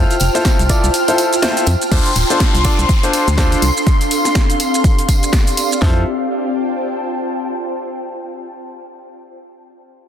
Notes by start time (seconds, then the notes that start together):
Already playing: E4 F4 A4 C5 G5 A5 F6
0.10 closed hi-hat, tambourine, shaker
0.20 F1, open hi-hat, tambourine
0.35 E4 F4 A4 C5, snare, closed hi-hat, tambourine, shaker
0.45 kick, snare, closed hi-hat, tambourine, shaker
0.59 C2, closed hi-hat, tambourine, shaker
0.69 E4 F4 A4 D5, kick, open hi-hat, tambourine
0.83 C2, closed hi-hat, tambourine, shaker
0.94 closed hi-hat, tambourine, shaker
1.08 E4 F4 A4 C5, closed hi-hat, tambourine, shaker
1.18 open hi-hat, tambourine
1.33 closed hi-hat, tambourine, shaker
1.42 E4 F4 A4 C5, snare, closed hi-hat, tambourine, shaker
1.57 closed hi-hat, tambourine, shaker
1.67 F2, open hi-hat, tambourine
1.81 closed hi-hat, tambourine, shaker
1.92 D2 D4 F4 A4 C5 C6, kick, closed hi-hat, crash, tambourine, downlifter, shaker
2.05 closed hi-hat, tambourine, shaker
2.16 D1, open hi-hat, tambourine
2.30 D4 F4 A4 C5, closed hi-hat, tambourine, shaker
2.40 kick, snare, closed hi-hat, tambourine, shaker
2.55 C2, closed hi-hat, shaker
2.64 D4 F4 A4 D5, kick, open hi-hat, tambourine
2.69 F5
2.79 C2, closed hi-hat, tambourine, shaker
2.89 kick, closed hi-hat, tambourine, shaker
3.03 D4 F4 A4 C5, closed hi-hat, shaker
3.13 open hi-hat, tambourine
3.27 D2, closed hi-hat, tambourine, shaker
3.38 D4 F4 A4 C5, kick, snare, open hi-hat, tambourine, shaker
3.52 closed hi-hat, tambourine, shaker
3.62 C2 C4, open hi-hat, tambourine
3.77 tambourine, shaker
3.86 kick, closed hi-hat, tambourine, shaker
4.01 closed hi-hat, tambourine, shaker
4.11 open hi-hat, tambourine
4.23 G4, snare, closed hi-hat, tambourine, shaker
4.35 kick, snare, closed hi-hat, tambourine, shaker
4.50 closed hi-hat, shaker
4.60 open hi-hat, tambourine
4.74 closed hi-hat, tambourine, shaker
4.84 kick, closed hi-hat, tambourine, shaker
4.99 closed hi-hat, shaker
5.08 kick, open hi-hat, tambourine
5.23 closed hi-hat, tambourine, shaker
5.33 kick, snare, closed hi-hat, tambourine, shaker
5.47 closed hi-hat, tambourine, shaker
5.57 open hi-hat, tambourine
5.71 tambourine, shaker
5.82 F2 E4 F4 A4 C5, kick, snare
5.90 C5
5.98 G5
6.04 A5